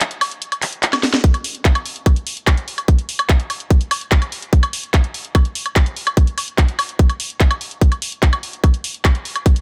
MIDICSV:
0, 0, Header, 1, 2, 480
1, 0, Start_track
1, 0, Tempo, 410959
1, 1447, Time_signature, 4, 2, 24, 8
1, 11228, End_track
2, 0, Start_track
2, 0, Title_t, "Drums"
2, 7, Note_on_c, 9, 39, 119
2, 7, Note_on_c, 9, 42, 67
2, 124, Note_off_c, 9, 39, 0
2, 124, Note_off_c, 9, 42, 0
2, 127, Note_on_c, 9, 42, 42
2, 244, Note_off_c, 9, 42, 0
2, 247, Note_on_c, 9, 46, 89
2, 247, Note_on_c, 9, 76, 78
2, 364, Note_off_c, 9, 46, 0
2, 364, Note_off_c, 9, 76, 0
2, 367, Note_on_c, 9, 42, 41
2, 484, Note_off_c, 9, 42, 0
2, 487, Note_on_c, 9, 42, 69
2, 604, Note_off_c, 9, 42, 0
2, 607, Note_on_c, 9, 42, 42
2, 607, Note_on_c, 9, 76, 40
2, 724, Note_off_c, 9, 42, 0
2, 724, Note_off_c, 9, 76, 0
2, 727, Note_on_c, 9, 39, 62
2, 727, Note_on_c, 9, 46, 102
2, 844, Note_off_c, 9, 39, 0
2, 844, Note_off_c, 9, 46, 0
2, 847, Note_on_c, 9, 42, 41
2, 964, Note_off_c, 9, 42, 0
2, 967, Note_on_c, 9, 39, 119
2, 967, Note_on_c, 9, 42, 68
2, 1084, Note_off_c, 9, 39, 0
2, 1084, Note_off_c, 9, 42, 0
2, 1087, Note_on_c, 9, 38, 51
2, 1087, Note_on_c, 9, 42, 42
2, 1087, Note_on_c, 9, 76, 75
2, 1204, Note_off_c, 9, 38, 0
2, 1204, Note_off_c, 9, 42, 0
2, 1204, Note_off_c, 9, 76, 0
2, 1207, Note_on_c, 9, 38, 78
2, 1207, Note_on_c, 9, 46, 86
2, 1324, Note_off_c, 9, 38, 0
2, 1324, Note_off_c, 9, 46, 0
2, 1327, Note_on_c, 9, 38, 82
2, 1327, Note_on_c, 9, 42, 43
2, 1444, Note_off_c, 9, 38, 0
2, 1444, Note_off_c, 9, 42, 0
2, 1447, Note_on_c, 9, 36, 118
2, 1447, Note_on_c, 9, 42, 70
2, 1563, Note_off_c, 9, 42, 0
2, 1564, Note_off_c, 9, 36, 0
2, 1567, Note_on_c, 9, 42, 42
2, 1567, Note_on_c, 9, 76, 38
2, 1684, Note_off_c, 9, 42, 0
2, 1684, Note_off_c, 9, 76, 0
2, 1687, Note_on_c, 9, 46, 106
2, 1803, Note_off_c, 9, 46, 0
2, 1807, Note_on_c, 9, 42, 40
2, 1924, Note_off_c, 9, 42, 0
2, 1927, Note_on_c, 9, 36, 116
2, 1927, Note_on_c, 9, 39, 123
2, 1927, Note_on_c, 9, 42, 67
2, 2044, Note_off_c, 9, 36, 0
2, 2044, Note_off_c, 9, 39, 0
2, 2044, Note_off_c, 9, 42, 0
2, 2047, Note_on_c, 9, 42, 40
2, 2047, Note_on_c, 9, 76, 75
2, 2164, Note_off_c, 9, 42, 0
2, 2164, Note_off_c, 9, 76, 0
2, 2167, Note_on_c, 9, 46, 96
2, 2284, Note_off_c, 9, 46, 0
2, 2287, Note_on_c, 9, 42, 40
2, 2404, Note_off_c, 9, 42, 0
2, 2407, Note_on_c, 9, 36, 123
2, 2407, Note_on_c, 9, 42, 69
2, 2407, Note_on_c, 9, 76, 37
2, 2524, Note_off_c, 9, 36, 0
2, 2524, Note_off_c, 9, 42, 0
2, 2524, Note_off_c, 9, 76, 0
2, 2527, Note_on_c, 9, 42, 42
2, 2644, Note_off_c, 9, 42, 0
2, 2647, Note_on_c, 9, 46, 102
2, 2764, Note_off_c, 9, 46, 0
2, 2767, Note_on_c, 9, 42, 41
2, 2884, Note_off_c, 9, 42, 0
2, 2887, Note_on_c, 9, 36, 119
2, 2887, Note_on_c, 9, 39, 123
2, 2887, Note_on_c, 9, 42, 70
2, 2887, Note_on_c, 9, 76, 77
2, 3004, Note_off_c, 9, 36, 0
2, 3004, Note_off_c, 9, 39, 0
2, 3004, Note_off_c, 9, 42, 0
2, 3004, Note_off_c, 9, 76, 0
2, 3007, Note_on_c, 9, 42, 40
2, 3124, Note_off_c, 9, 42, 0
2, 3127, Note_on_c, 9, 46, 93
2, 3244, Note_off_c, 9, 46, 0
2, 3247, Note_on_c, 9, 42, 43
2, 3247, Note_on_c, 9, 76, 39
2, 3363, Note_off_c, 9, 42, 0
2, 3363, Note_off_c, 9, 76, 0
2, 3367, Note_on_c, 9, 36, 127
2, 3367, Note_on_c, 9, 42, 67
2, 3484, Note_off_c, 9, 36, 0
2, 3484, Note_off_c, 9, 42, 0
2, 3487, Note_on_c, 9, 42, 42
2, 3604, Note_off_c, 9, 42, 0
2, 3607, Note_on_c, 9, 46, 108
2, 3724, Note_off_c, 9, 46, 0
2, 3727, Note_on_c, 9, 42, 41
2, 3727, Note_on_c, 9, 76, 76
2, 3844, Note_off_c, 9, 42, 0
2, 3844, Note_off_c, 9, 76, 0
2, 3847, Note_on_c, 9, 36, 121
2, 3847, Note_on_c, 9, 39, 123
2, 3847, Note_on_c, 9, 42, 64
2, 3964, Note_off_c, 9, 36, 0
2, 3964, Note_off_c, 9, 39, 0
2, 3964, Note_off_c, 9, 42, 0
2, 3967, Note_on_c, 9, 42, 40
2, 4084, Note_off_c, 9, 42, 0
2, 4087, Note_on_c, 9, 46, 98
2, 4087, Note_on_c, 9, 76, 38
2, 4204, Note_off_c, 9, 46, 0
2, 4204, Note_off_c, 9, 76, 0
2, 4207, Note_on_c, 9, 42, 39
2, 4324, Note_off_c, 9, 42, 0
2, 4327, Note_on_c, 9, 36, 120
2, 4327, Note_on_c, 9, 42, 66
2, 4444, Note_off_c, 9, 36, 0
2, 4444, Note_off_c, 9, 42, 0
2, 4447, Note_on_c, 9, 42, 41
2, 4564, Note_off_c, 9, 42, 0
2, 4567, Note_on_c, 9, 46, 109
2, 4567, Note_on_c, 9, 76, 75
2, 4684, Note_off_c, 9, 46, 0
2, 4684, Note_off_c, 9, 76, 0
2, 4687, Note_on_c, 9, 42, 40
2, 4804, Note_off_c, 9, 42, 0
2, 4807, Note_on_c, 9, 36, 127
2, 4807, Note_on_c, 9, 39, 126
2, 4807, Note_on_c, 9, 42, 66
2, 4924, Note_off_c, 9, 36, 0
2, 4924, Note_off_c, 9, 39, 0
2, 4924, Note_off_c, 9, 42, 0
2, 4927, Note_on_c, 9, 42, 39
2, 4927, Note_on_c, 9, 76, 37
2, 5044, Note_off_c, 9, 42, 0
2, 5044, Note_off_c, 9, 76, 0
2, 5047, Note_on_c, 9, 46, 96
2, 5164, Note_off_c, 9, 46, 0
2, 5168, Note_on_c, 9, 42, 42
2, 5284, Note_off_c, 9, 42, 0
2, 5287, Note_on_c, 9, 36, 125
2, 5288, Note_on_c, 9, 42, 64
2, 5404, Note_off_c, 9, 36, 0
2, 5404, Note_off_c, 9, 42, 0
2, 5407, Note_on_c, 9, 42, 39
2, 5407, Note_on_c, 9, 76, 78
2, 5524, Note_off_c, 9, 42, 0
2, 5524, Note_off_c, 9, 76, 0
2, 5527, Note_on_c, 9, 46, 109
2, 5644, Note_off_c, 9, 46, 0
2, 5647, Note_on_c, 9, 42, 38
2, 5764, Note_off_c, 9, 42, 0
2, 5767, Note_on_c, 9, 36, 123
2, 5767, Note_on_c, 9, 39, 119
2, 5767, Note_on_c, 9, 42, 64
2, 5767, Note_on_c, 9, 76, 38
2, 5884, Note_off_c, 9, 36, 0
2, 5884, Note_off_c, 9, 39, 0
2, 5884, Note_off_c, 9, 42, 0
2, 5884, Note_off_c, 9, 76, 0
2, 5887, Note_on_c, 9, 42, 39
2, 6004, Note_off_c, 9, 42, 0
2, 6007, Note_on_c, 9, 46, 96
2, 6124, Note_off_c, 9, 46, 0
2, 6127, Note_on_c, 9, 42, 38
2, 6244, Note_off_c, 9, 42, 0
2, 6247, Note_on_c, 9, 36, 125
2, 6247, Note_on_c, 9, 42, 66
2, 6247, Note_on_c, 9, 76, 80
2, 6364, Note_off_c, 9, 36, 0
2, 6364, Note_off_c, 9, 42, 0
2, 6364, Note_off_c, 9, 76, 0
2, 6367, Note_on_c, 9, 42, 39
2, 6484, Note_off_c, 9, 42, 0
2, 6487, Note_on_c, 9, 46, 114
2, 6604, Note_off_c, 9, 46, 0
2, 6607, Note_on_c, 9, 42, 39
2, 6607, Note_on_c, 9, 76, 39
2, 6724, Note_off_c, 9, 42, 0
2, 6724, Note_off_c, 9, 76, 0
2, 6727, Note_on_c, 9, 36, 124
2, 6727, Note_on_c, 9, 39, 121
2, 6727, Note_on_c, 9, 42, 64
2, 6844, Note_off_c, 9, 36, 0
2, 6844, Note_off_c, 9, 39, 0
2, 6844, Note_off_c, 9, 42, 0
2, 6847, Note_on_c, 9, 42, 38
2, 6964, Note_off_c, 9, 42, 0
2, 6967, Note_on_c, 9, 46, 96
2, 7084, Note_off_c, 9, 46, 0
2, 7087, Note_on_c, 9, 42, 39
2, 7087, Note_on_c, 9, 76, 80
2, 7204, Note_off_c, 9, 42, 0
2, 7204, Note_off_c, 9, 76, 0
2, 7207, Note_on_c, 9, 36, 127
2, 7207, Note_on_c, 9, 42, 65
2, 7324, Note_off_c, 9, 36, 0
2, 7324, Note_off_c, 9, 42, 0
2, 7327, Note_on_c, 9, 42, 38
2, 7444, Note_off_c, 9, 42, 0
2, 7448, Note_on_c, 9, 46, 114
2, 7448, Note_on_c, 9, 76, 40
2, 7564, Note_off_c, 9, 46, 0
2, 7564, Note_off_c, 9, 76, 0
2, 7567, Note_on_c, 9, 42, 37
2, 7684, Note_off_c, 9, 42, 0
2, 7687, Note_on_c, 9, 36, 121
2, 7688, Note_on_c, 9, 39, 115
2, 7688, Note_on_c, 9, 42, 61
2, 7804, Note_off_c, 9, 36, 0
2, 7804, Note_off_c, 9, 39, 0
2, 7804, Note_off_c, 9, 42, 0
2, 7808, Note_on_c, 9, 42, 38
2, 7925, Note_off_c, 9, 42, 0
2, 7928, Note_on_c, 9, 46, 95
2, 7928, Note_on_c, 9, 76, 79
2, 8044, Note_off_c, 9, 46, 0
2, 8044, Note_off_c, 9, 76, 0
2, 8048, Note_on_c, 9, 42, 37
2, 8165, Note_off_c, 9, 42, 0
2, 8167, Note_on_c, 9, 36, 127
2, 8168, Note_on_c, 9, 42, 64
2, 8284, Note_off_c, 9, 36, 0
2, 8284, Note_off_c, 9, 42, 0
2, 8288, Note_on_c, 9, 42, 38
2, 8288, Note_on_c, 9, 76, 41
2, 8404, Note_off_c, 9, 42, 0
2, 8404, Note_off_c, 9, 76, 0
2, 8407, Note_on_c, 9, 46, 112
2, 8524, Note_off_c, 9, 46, 0
2, 8528, Note_on_c, 9, 42, 38
2, 8644, Note_off_c, 9, 42, 0
2, 8647, Note_on_c, 9, 36, 124
2, 8647, Note_on_c, 9, 39, 115
2, 8647, Note_on_c, 9, 42, 63
2, 8764, Note_off_c, 9, 36, 0
2, 8764, Note_off_c, 9, 39, 0
2, 8764, Note_off_c, 9, 42, 0
2, 8767, Note_on_c, 9, 42, 37
2, 8767, Note_on_c, 9, 76, 81
2, 8884, Note_off_c, 9, 42, 0
2, 8884, Note_off_c, 9, 76, 0
2, 8887, Note_on_c, 9, 46, 93
2, 9004, Note_off_c, 9, 46, 0
2, 9007, Note_on_c, 9, 42, 39
2, 9124, Note_off_c, 9, 42, 0
2, 9127, Note_on_c, 9, 36, 119
2, 9127, Note_on_c, 9, 42, 64
2, 9244, Note_off_c, 9, 36, 0
2, 9244, Note_off_c, 9, 42, 0
2, 9248, Note_on_c, 9, 42, 38
2, 9248, Note_on_c, 9, 76, 42
2, 9364, Note_off_c, 9, 42, 0
2, 9364, Note_off_c, 9, 76, 0
2, 9367, Note_on_c, 9, 46, 110
2, 9484, Note_off_c, 9, 46, 0
2, 9487, Note_on_c, 9, 42, 38
2, 9604, Note_off_c, 9, 42, 0
2, 9607, Note_on_c, 9, 36, 119
2, 9607, Note_on_c, 9, 39, 113
2, 9607, Note_on_c, 9, 42, 62
2, 9724, Note_off_c, 9, 36, 0
2, 9724, Note_off_c, 9, 39, 0
2, 9724, Note_off_c, 9, 42, 0
2, 9727, Note_on_c, 9, 42, 38
2, 9727, Note_on_c, 9, 76, 81
2, 9844, Note_off_c, 9, 42, 0
2, 9844, Note_off_c, 9, 76, 0
2, 9847, Note_on_c, 9, 46, 93
2, 9964, Note_off_c, 9, 46, 0
2, 9967, Note_on_c, 9, 42, 36
2, 10084, Note_off_c, 9, 42, 0
2, 10087, Note_on_c, 9, 36, 120
2, 10087, Note_on_c, 9, 42, 65
2, 10087, Note_on_c, 9, 76, 43
2, 10204, Note_off_c, 9, 36, 0
2, 10204, Note_off_c, 9, 42, 0
2, 10204, Note_off_c, 9, 76, 0
2, 10207, Note_on_c, 9, 42, 40
2, 10324, Note_off_c, 9, 42, 0
2, 10327, Note_on_c, 9, 46, 108
2, 10444, Note_off_c, 9, 46, 0
2, 10447, Note_on_c, 9, 42, 37
2, 10564, Note_off_c, 9, 42, 0
2, 10567, Note_on_c, 9, 36, 122
2, 10567, Note_on_c, 9, 39, 114
2, 10567, Note_on_c, 9, 42, 62
2, 10567, Note_on_c, 9, 76, 84
2, 10684, Note_off_c, 9, 36, 0
2, 10684, Note_off_c, 9, 39, 0
2, 10684, Note_off_c, 9, 42, 0
2, 10684, Note_off_c, 9, 76, 0
2, 10687, Note_on_c, 9, 42, 37
2, 10804, Note_off_c, 9, 42, 0
2, 10807, Note_on_c, 9, 46, 91
2, 10924, Note_off_c, 9, 46, 0
2, 10927, Note_on_c, 9, 42, 40
2, 10927, Note_on_c, 9, 76, 43
2, 11044, Note_off_c, 9, 42, 0
2, 11044, Note_off_c, 9, 76, 0
2, 11047, Note_on_c, 9, 36, 116
2, 11047, Note_on_c, 9, 42, 65
2, 11164, Note_off_c, 9, 36, 0
2, 11164, Note_off_c, 9, 42, 0
2, 11167, Note_on_c, 9, 42, 40
2, 11228, Note_off_c, 9, 42, 0
2, 11228, End_track
0, 0, End_of_file